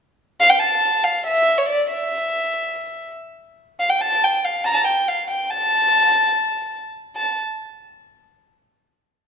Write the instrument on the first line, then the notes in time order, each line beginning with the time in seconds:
violin
0.40 F5
0.50 G5
0.59 A5
1.04 F5
1.27 E5
1.58 C#5
1.69 D5
1.91 E5
3.80 F5
3.90 G5
4.01 A5
4.24 G5
4.44 F5
4.64 A5 A#5
4.73 A5
4.88 G5
5.09 F5
5.31 G5
5.50 A5
7.16 A5